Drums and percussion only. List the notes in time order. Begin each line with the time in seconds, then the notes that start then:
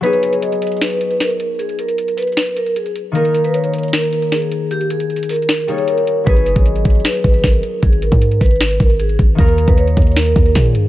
0.04 closed hi-hat
0.13 closed hi-hat
0.23 closed hi-hat
0.33 closed hi-hat
0.42 closed hi-hat
0.52 closed hi-hat
0.62 closed hi-hat
0.67 closed hi-hat
0.72 closed hi-hat
0.77 closed hi-hat
0.81 snare, closed hi-hat
0.91 closed hi-hat
1.01 closed hi-hat
1.11 closed hi-hat
1.20 snare, closed hi-hat
1.30 closed hi-hat
1.40 closed hi-hat
1.59 closed hi-hat
1.69 closed hi-hat
1.79 closed hi-hat
1.89 closed hi-hat
1.98 closed hi-hat
2.08 closed hi-hat
2.18 closed hi-hat, open hi-hat
2.22 closed hi-hat
2.27 closed hi-hat
2.32 closed hi-hat
2.37 snare, closed hi-hat
2.47 closed hi-hat
2.57 closed hi-hat
2.66 closed hi-hat
2.76 closed hi-hat
2.86 closed hi-hat
2.96 closed hi-hat
3.15 closed hi-hat
3.25 closed hi-hat
3.35 closed hi-hat
3.44 closed hi-hat
3.54 closed hi-hat
3.64 closed hi-hat
3.74 closed hi-hat
3.78 closed hi-hat
3.83 closed hi-hat
3.88 closed hi-hat
3.93 snare, closed hi-hat
4.03 closed hi-hat
4.13 closed hi-hat
4.22 closed hi-hat
4.32 snare, closed hi-hat
4.42 closed hi-hat
4.52 closed hi-hat
4.71 closed hi-hat
4.81 closed hi-hat
4.90 closed hi-hat
5.00 closed hi-hat
5.10 closed hi-hat
5.16 closed hi-hat
5.23 closed hi-hat
5.29 closed hi-hat, open hi-hat
5.36 closed hi-hat
5.42 closed hi-hat
5.49 snare, closed hi-hat
5.55 closed hi-hat
5.62 closed hi-hat
5.68 closed hi-hat
5.78 closed hi-hat
5.88 closed hi-hat
5.98 closed hi-hat
6.07 closed hi-hat
6.27 kick, closed hi-hat
6.37 closed hi-hat
6.46 closed hi-hat
6.56 kick, closed hi-hat
6.66 closed hi-hat
6.75 closed hi-hat
6.85 kick, closed hi-hat
6.90 closed hi-hat
6.95 closed hi-hat
7.00 closed hi-hat
7.05 snare, closed hi-hat
7.14 closed hi-hat
7.24 kick, closed hi-hat
7.34 closed hi-hat
7.44 kick, snare, closed hi-hat
7.53 closed hi-hat
7.63 closed hi-hat
7.83 kick, closed hi-hat
7.92 closed hi-hat
8.02 closed hi-hat
8.12 kick, closed hi-hat
8.22 closed hi-hat
8.31 closed hi-hat
8.41 kick, closed hi-hat, open hi-hat
8.46 closed hi-hat
8.51 closed hi-hat
8.56 closed hi-hat
8.61 snare, closed hi-hat
8.70 closed hi-hat
8.80 kick, closed hi-hat
8.90 closed hi-hat
9.00 closed hi-hat
9.09 closed hi-hat
9.19 kick, closed hi-hat
9.39 kick, closed hi-hat
9.48 closed hi-hat
9.58 closed hi-hat
9.68 kick, closed hi-hat
9.78 closed hi-hat
9.87 closed hi-hat
9.97 kick, closed hi-hat
10.02 closed hi-hat
10.07 closed hi-hat
10.12 closed hi-hat
10.16 snare, closed hi-hat
10.26 closed hi-hat
10.36 kick, closed hi-hat
10.46 closed hi-hat
10.55 kick, snare, closed hi-hat
10.65 closed hi-hat
10.75 closed hi-hat